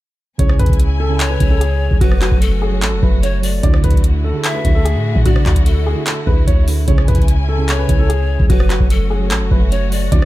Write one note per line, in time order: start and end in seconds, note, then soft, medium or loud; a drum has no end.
0.38 0.59 C#2 loud
0.38 0.94 C#3 loud
0.38 2.00 C#3 medium
0.38 0.94 C#4 medium
0.38 3.60 C#4 medium
0.38 2.00 E4 medium
0.38 0.95 E4 medium
0.38 0.95 G#4 loud
0.38 0.55 C#5 medium
0.38 2.00 G#5 medium
0.38 kick loud
0.38 closed hi-hat medium
0.49 cross-stick loud
0.59 0.69 E2 loud
0.59 0.75 B4 medium
0.59 kick medium
0.59 closed hi-hat medium
0.66 1.38 C#2 loud
0.66 kick loud
0.66 closed hi-hat medium
0.73 closed hi-hat soft
0.80 closed hi-hat medium
1.00 1.29 A4 medium
1.09 1.33 C#3 medium
1.09 1.34 C#4 medium
1.09 1.34 E4 medium
1.09 1.34 G#4 medium
1.20 1.97 C#5 loud
1.20 clap loud
1.20 closed hi-hat medium
1.31 1.46 B4 medium
1.39 1.89 C#2 loud
1.39 1.87 C#3 medium
1.39 1.87 C#4 medium
1.39 1.88 E4 medium
1.39 1.88 G#4 medium
1.39 kick loud
1.39 closed hi-hat medium
1.51 1.58 A4 medium
1.61 1.99 G#4 medium
1.61 closed hi-hat medium
1.91 2.01 C#2 loud
1.91 kick loud
2.00 2.31 F#1 loud
2.00 2.56 F#3 loud
2.00 6.84 A3 medium
2.00 2.17 F#4 medium
2.00 2.56 F#4 medium
2.00 3.62 F#4 medium
2.00 2.57 A4 medium
2.00 2.39 B4 loud
2.00 2.57 C#5 loud
2.00 kick loud
2.00 closed hi-hat medium
2.12 cross-stick medium
2.21 2.37 F#4 medium
2.21 clap loud
2.21 closed hi-hat medium
2.32 2.84 F#1 loud
2.32 kick loud
2.42 2.80 A4 medium
2.42 closed hi-hat medium
2.62 2.77 G#4 medium
2.71 2.95 F#3 medium
2.71 2.96 F#4 medium
2.71 2.96 A4 medium
2.71 2.97 C#5 medium
2.82 2.94 A1 medium
2.82 2.98 A4 medium
2.82 clap loud
2.82 closed hi-hat medium
2.93 3.02 F#1 loud
3.01 3.61 F#1 loud
3.01 3.33 F#3 medium
3.01 3.34 F#4 medium
3.01 3.34 A4 medium
3.01 3.18 B4 medium
3.01 3.35 E5 medium
3.01 kick loud
3.23 3.42 C#5 medium
3.23 3.39 C#5 medium
3.23 closed hi-hat medium
3.41 3.58 F#3 medium
3.41 3.58 F#4 medium
3.41 3.59 A4 medium
3.41 3.59 C#5 medium
3.41 3.63 D5 medium
3.41 open hi-hat medium
3.63 3.83 D2 loud
3.63 4.18 D3 loud
3.63 6.85 D3 medium
3.63 4.19 D4 medium
3.63 8.46 E4 medium
3.63 4.19 E4 medium
3.63 6.85 F#4 medium
3.63 4.20 F#4 loud
3.63 3.79 D5 medium
3.63 kick loud
3.63 closed hi-hat medium
3.74 cross-stick loud
3.84 4.32 D2 loud
3.84 4.00 B4 medium
3.84 kick medium
3.84 closed hi-hat medium
3.91 kick loud
3.91 closed hi-hat medium
3.97 closed hi-hat soft
4.04 closed hi-hat medium
4.24 4.53 A4 medium
4.33 4.57 D3 medium
4.33 4.58 D4 medium
4.33 4.58 E4 medium
4.33 4.59 G#4 medium
4.44 5.22 E5 medium
4.44 clap loud
4.44 closed hi-hat medium
4.55 4.70 B4 medium
4.64 4.97 D2 loud
4.64 5.12 D3 medium
4.64 5.12 D4 medium
4.64 5.12 E4 medium
4.64 5.13 F#4 medium
4.64 kick loud
4.64 closed hi-hat medium
4.75 4.83 A4 medium
4.85 5.23 G#4 medium
4.85 closed hi-hat medium
4.95 5.15 A2 medium
5.16 5.37 A2 loud
5.16 kick loud
5.25 5.80 D3 medium
5.25 5.81 D4 medium
5.25 5.81 E4 medium
5.25 5.41 F#4 loud
5.25 5.82 F#4 loud
5.25 5.64 D5 loud
5.25 kick loud
5.25 closed hi-hat medium
5.36 5.45 D3 loud
5.36 cross-stick loud
5.46 5.95 D2 loud
5.46 5.62 F#4 medium
5.46 kick medium
5.46 clap medium
5.46 closed hi-hat soft
5.56 kick loud
5.56 closed hi-hat medium
5.66 6.04 A4 medium
5.66 closed hi-hat medium
5.86 6.02 G#4 medium
5.95 6.20 D3 medium
5.95 6.20 D4 medium
5.95 6.20 E4 medium
5.95 6.21 F#4 medium
6.06 6.22 A4 medium
6.06 clap loud
6.06 closed hi-hat medium
6.26 6.46 D2 loud
6.26 6.58 D3 medium
6.26 6.58 D4 medium
6.26 6.59 E4 medium
6.26 6.59 G#4 medium
6.26 6.43 B4 medium
6.26 kick loud
6.47 6.86 D2 loud
6.47 6.63 C#5 medium
6.47 kick loud
6.47 closed hi-hat medium
6.66 6.83 D3 medium
6.66 6.83 D4 medium
6.66 6.84 E4 medium
6.66 6.84 A4 medium
6.66 open hi-hat medium
6.87 7.07 C#2 loud
6.87 7.42 C#3 loud
6.87 8.48 C#3 medium
6.87 7.43 C#4 medium
6.87 8.48 C#4 medium
6.87 7.43 E4 medium
6.87 7.44 G#4 loud
6.87 7.03 C#5 medium
6.87 8.48 G#5 medium
6.87 kick loud
6.87 closed hi-hat medium
6.98 cross-stick loud
7.08 7.18 E2 loud
7.08 7.24 B4 medium
7.08 kick medium
7.08 closed hi-hat medium
7.15 7.86 C#2 loud
7.15 kick loud
7.15 closed hi-hat medium
7.22 closed hi-hat soft
7.28 closed hi-hat medium
7.49 7.77 A4 medium
7.57 7.82 C#3 medium
7.57 7.82 C#4 medium
7.57 7.83 E4 medium
7.57 7.83 G#4 medium
7.69 8.46 C#5 loud
7.69 clap loud
7.69 closed hi-hat medium
7.79 7.95 B4 medium
7.87 8.38 C#2 loud
7.87 8.35 C#3 medium
7.87 8.36 C#4 medium
7.87 8.36 E4 medium
7.87 8.37 G#4 medium
7.87 kick loud
7.87 closed hi-hat medium
7.99 8.07 A4 medium
8.09 8.47 G#4 medium
8.09 closed hi-hat medium
8.40 8.50 C#2 loud
8.40 kick loud
8.49 8.79 F#1 loud
8.49 9.04 F#3 medium
8.49 10.25 A3 medium
8.49 10.11 C#4 medium
8.49 8.65 F#4 medium
8.49 9.05 F#4 medium
8.49 10.25 F#4 medium
8.49 9.05 A4 medium
8.49 8.88 B4 loud
8.49 9.06 C#5 loud
8.49 kick loud
8.49 closed hi-hat medium
8.60 cross-stick loud
8.70 8.86 F#4 medium
8.70 clap medium
8.70 closed hi-hat medium
8.80 9.33 F#1 loud
8.80 kick loud
8.90 9.29 A4 medium
8.90 closed hi-hat medium
9.10 9.26 G#4 medium
9.19 9.44 F#3 medium
9.19 9.44 F#4 medium
9.19 9.45 A4 medium
9.19 9.45 C#5 medium
9.31 9.43 A1 loud
9.31 9.47 A4 medium
9.31 clap loud
9.31 closed hi-hat medium
9.41 9.51 F#1 loud
9.50 10.10 F#1 loud
9.50 9.82 F#3 medium
9.50 9.83 F#4 medium
9.50 9.83 A4 medium
9.50 9.67 B4 medium
9.50 9.83 E5 medium
9.50 kick loud
9.72 9.91 C#5 medium
9.72 9.87 C#5 medium
9.72 closed hi-hat medium
9.90 10.07 F#3 medium
9.90 10.07 F#4 medium
9.90 10.07 A4 medium
9.90 10.08 C#5 medium
9.90 10.11 D5 medium
9.90 open hi-hat medium
10.12 10.25 D2 loud
10.12 10.25 D3 loud
10.12 10.25 D3 medium
10.12 10.25 D4 loud
10.12 10.25 E4 medium
10.12 10.25 F#4 loud
10.12 10.25 D5 medium
10.12 kick loud
10.12 closed hi-hat medium